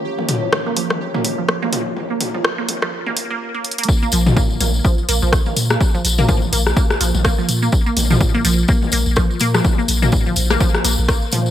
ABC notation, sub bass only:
X:1
M:4/4
L:1/16
Q:"Swing 16ths" 1/4=125
K:Bbdor
V:1 name="Sub bass" clef=bass
z16 | z16 | z2 B,,,2 z2 B,,,2 z2 B,,, B,,,2 z B,,2 | z2 B,,,2 z2 B,,,2 z2 B,,, B,,,2 z B,,2 |
z2 B,,,2 z2 B,,,2 z2 B,,, B,,,2 z B,,2 | z2 B,,,2 z2 B,,,2 z2 B,,, B,,,2 z B,,2 |]